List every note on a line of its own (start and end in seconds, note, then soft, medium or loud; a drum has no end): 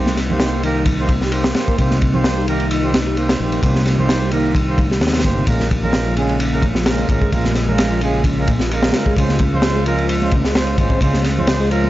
0.00 1.52 C2 loud
0.00 0.39 C3 medium
0.00 5.44 C3 medium
0.00 5.44 G3 medium
0.00 0.14 A#3 medium
0.00 9.13 A#3 medium
0.00 0.14 D#4 medium
0.00 5.44 D#4 medium
0.00 0.14 G4 medium
0.00 0.14 C5 medium
0.06 snare soft
0.06 high conga medium
0.17 snare soft
0.17 ride medium
0.29 0.61 A#3 medium
0.29 0.61 D#4 medium
0.29 0.61 G4 medium
0.29 0.61 C5 loud
0.29 low conga medium
0.40 snare loud
0.40 ride medium
0.53 0.62 G3 medium
0.63 1.09 D#3 medium
0.63 0.84 A#3 medium
0.63 0.84 D#4 medium
0.63 0.83 G4 medium
0.63 0.83 A#4 loud
0.63 ride medium
0.85 kick loud
0.85 ride medium
0.99 1.10 A#3 medium
0.99 1.11 D#4 medium
0.99 1.11 G4 medium
0.99 1.10 C5 loud
1.09 1.21 C3 medium
1.09 kick medium
1.09 ride medium
1.09 high conga medium
1.21 1.32 G3 medium
1.21 snare soft
1.32 1.52 A#3 medium
1.32 1.52 D#4 medium
1.32 1.52 G4 medium
1.32 1.52 C5 medium
1.32 ride medium
1.44 snare loud
1.54 1.75 A#3 medium
1.54 1.75 D#4 medium
1.54 1.75 G4 medium
1.54 1.76 C5 medium
1.54 snare loud
1.54 ride medium
1.54 high conga medium
1.68 1.78 A#3 medium
1.68 kick medium
1.78 3.37 C2 loud
1.78 2.24 C3 medium
1.78 1.99 A#3 medium
1.78 1.99 D#4 medium
1.78 1.99 G4 medium
1.78 1.99 C5 medium
1.78 kick loud
1.78 ride medium
1.91 snare soft
1.91 high conga medium
2.01 kick medium
2.01 ride medium
2.14 2.45 A#3 medium
2.14 2.45 D#4 medium
2.14 2.45 G4 medium
2.14 2.45 C5 loud
2.14 low conga medium
2.24 snare loud
2.24 ride medium
2.38 2.47 G3 medium
2.47 2.93 D#3 medium
2.47 2.68 A#3 medium
2.47 2.68 D#4 medium
2.47 2.68 G4 medium
2.47 2.68 A#4 loud
2.47 ride medium
2.60 ride soft
2.71 ride medium
2.83 2.95 A#3 medium
2.83 2.95 D#4 medium
2.83 2.95 G4 medium
2.83 2.95 C5 medium
2.94 3.05 C3 medium
2.94 snare loud
2.94 ride medium
2.94 high conga medium
3.07 3.17 G3 medium
3.17 3.37 A#3 medium
3.17 3.37 D#4 medium
3.17 3.37 G4 medium
3.17 3.37 C5 medium
3.17 ride medium
3.29 snare loud
3.29 ride medium
3.40 3.59 A#1 medium
3.40 3.60 A#3 medium
3.40 3.60 D#4 medium
3.40 3.60 G4 medium
3.40 3.60 C5 medium
3.40 high conga medium
3.52 3.62 A#3 medium
3.52 ride medium
3.63 5.02 C2 loud
3.63 4.08 C3 medium
3.63 3.83 A#3 medium
3.63 3.83 D#4 medium
3.63 3.83 G4 medium
3.63 3.83 C5 medium
3.63 kick loud
3.63 ride medium
3.75 snare soft
3.75 high conga loud
3.85 snare soft
3.85 ride medium
3.98 4.30 A#3 medium
3.98 4.30 D#4 medium
3.98 4.30 G4 medium
3.98 4.30 C5 loud
3.98 low conga medium
4.09 snare loud
4.09 ride medium
4.22 4.31 G3 medium
4.31 4.78 D#3 medium
4.31 4.53 A#3 medium
4.31 4.53 D#4 medium
4.31 4.53 G4 medium
4.31 4.53 A#4 loud
4.31 ride medium
4.55 kick loud
4.55 ride medium
4.68 4.80 A#3 medium
4.68 4.80 D#4 medium
4.68 4.80 G4 medium
4.68 4.80 C5 loud
4.78 4.91 D#3 medium
4.78 kick loud
4.78 ride medium
4.78 high conga medium
4.91 5.01 G3 medium
4.91 snare soft
5.01 5.26 D#2 medium
5.01 snare medium
5.01 ride medium
5.07 snare medium
5.07 ride medium
5.13 5.23 A#3 medium
5.13 5.23 D#4 medium
5.13 5.23 G4 medium
5.13 5.23 C5 medium
5.13 snare medium
5.13 ride medium
5.19 snare medium
5.19 ride medium
5.24 5.43 G1 medium
5.24 5.45 A#3 medium
5.24 5.44 D#4 medium
5.24 5.45 G4 medium
5.24 5.45 C5 medium
5.24 kick medium
5.24 ride medium
5.24 high conga medium
5.37 5.46 C3 loud
5.47 7.06 A#1 loud
5.47 5.93 A#2 medium
5.47 11.90 C#3 medium
5.47 5.68 G#3 medium
5.47 9.13 G#3 medium
5.47 5.68 C#4 medium
5.47 5.68 F4 medium
5.47 11.90 F4 medium
5.47 5.68 A#4 medium
5.47 kick loud
5.47 ride medium
5.60 snare soft
5.60 high conga medium
5.71 kick medium
5.71 ride medium
5.71 muted conga medium
5.83 6.14 G#3 medium
5.83 6.14 C#4 medium
5.83 6.14 F4 medium
5.83 6.14 A#4 loud
5.83 low conga medium
5.93 snare loud
5.93 ride medium
6.07 6.16 F3 medium
6.17 6.62 C#3 medium
6.17 6.37 G#3 medium
6.17 6.37 C#4 medium
6.17 6.37 F4 medium
6.17 6.37 G#4 loud
6.17 ride medium
6.17 muted conga medium
6.29 ride soft
6.40 ride medium
6.52 6.64 G#3 medium
6.52 6.64 C#4 medium
6.52 6.64 F4 medium
6.52 6.64 A#4 loud
6.52 muted conga medium
6.62 6.74 A#2 medium
6.62 kick medium
6.62 ride medium
6.62 high conga medium
6.75 6.86 F3 medium
6.75 snare medium
6.86 7.06 G#3 medium
6.86 7.06 C#4 medium
6.86 7.06 F4 medium
6.86 7.06 A#4 medium
6.86 snare loud
6.86 ride medium
6.98 ride soft
6.98 muted conga medium
7.09 7.28 G#1 medium
7.09 7.29 G#3 medium
7.09 7.29 C#4 medium
7.09 7.29 F4 medium
7.09 7.29 A#4 medium
7.09 kick loud
7.09 ride medium
7.09 high conga medium
7.22 7.32 G#3 medium
7.22 kick loud
7.32 8.91 A#1 loud
7.32 7.78 A#2 medium
7.32 7.53 G#3 medium
7.32 7.53 C#4 medium
7.32 7.53 F4 medium
7.32 7.53 A#4 medium
7.32 kick loud
7.32 ride medium
7.32 muted conga medium
7.45 snare soft
7.45 high conga medium
7.55 snare soft
7.55 ride medium
7.68 7.99 G#3 medium
7.68 7.99 C#4 medium
7.68 7.99 F4 medium
7.68 7.99 A#4 loud
7.68 low conga medium
7.78 snare loud
7.78 ride loud
7.78 muted conga medium
7.92 8.01 F3 medium
8.01 8.47 C#3 medium
8.01 8.22 G#3 medium
8.01 8.22 C#4 medium
8.01 8.22 F4 medium
8.01 8.22 G#4 loud
8.01 ride medium
8.14 muted conga soft
8.24 kick loud
8.24 ride medium
8.38 8.49 G#3 medium
8.38 8.49 C#4 medium
8.38 8.49 F4 medium
8.38 8.49 A#4 loud
8.47 8.59 A#2 medium
8.47 kick loud
8.47 ride medium
8.47 high conga medium
8.59 8.71 F3 medium
8.59 snare soft
8.59 muted conga medium
8.71 8.91 G#3 medium
8.71 8.91 C#4 medium
8.71 8.91 F4 medium
8.71 8.91 A#4 medium
8.71 ride medium
8.83 snare loud
8.93 9.14 G#3 medium
8.93 9.14 C#4 medium
8.93 9.14 F4 medium
8.93 9.14 A#4 medium
8.93 snare loud
8.93 ride medium
8.93 muted conga medium
8.93 high conga medium
9.06 9.16 G#3 medium
9.06 kick medium
9.17 10.75 C#2 loud
9.17 9.62 C#3 medium
9.17 11.90 G#3 medium
9.17 9.37 G#3 medium
9.17 9.37 C#4 medium
9.17 9.37 F4 medium
9.17 11.90 C5 medium
9.17 9.37 C5 medium
9.17 kick loud
9.17 ride loud
9.29 snare soft
9.29 high conga medium
9.39 kick loud
9.39 ride medium
9.39 muted conga medium
9.53 9.84 G#3 medium
9.53 9.84 C#4 medium
9.53 9.84 F4 medium
9.53 9.84 C5 loud
9.53 low conga medium
9.62 snare loud
9.62 ride medium
9.76 9.85 G#3 medium
9.76 muted conga medium
9.86 10.32 F3 medium
9.86 10.06 G#3 medium
9.86 10.07 C#4 medium
9.86 10.06 F4 medium
9.86 10.07 A#4 loud
9.86 ride medium
9.98 ride soft
10.09 ride medium
10.21 10.33 G#3 medium
10.21 10.33 C#4 medium
10.21 10.33 F4 medium
10.21 10.33 C5 loud
10.21 muted conga medium
10.31 10.43 C#3 medium
10.31 kick loud
10.31 ride medium
10.31 high conga medium
10.44 10.55 G#3 medium
10.44 snare medium
10.55 10.75 G#3 medium
10.55 10.75 C#4 medium
10.55 10.75 F4 medium
10.55 10.75 C5 medium
10.55 snare loud
10.55 ride medium
10.55 muted conga medium
10.67 ride soft
10.78 10.97 G#1 medium
10.78 10.99 G#3 medium
10.78 10.99 C#4 medium
10.78 10.99 F4 medium
10.78 10.99 C5 medium
10.78 kick loud
10.78 ride medium
10.78 high conga medium
10.90 11.01 C4 medium
10.90 kick loud
11.01 11.90 C#2 loud
11.01 11.47 C#3 medium
11.01 11.22 G#3 medium
11.01 11.22 C#4 medium
11.01 11.22 F4 medium
11.01 11.22 C5 medium
11.01 kick loud
11.01 ride medium
11.01 muted conga medium
11.14 snare soft
11.14 high conga medium
11.24 snare soft
11.24 ride medium
11.37 11.69 G#3 loud
11.37 11.69 C#4 medium
11.37 11.69 F4 medium
11.37 11.69 C5 loud
11.37 muted conga medium
11.37 low conga medium
11.47 snare loud
11.47 ride medium
11.60 11.70 G#3 medium
11.71 11.90 F3 medium
11.71 11.90 G#3 medium
11.71 11.90 C#4 medium
11.71 11.90 F4 medium
11.71 11.90 A#4 loud
11.71 ride medium
11.84 muted conga medium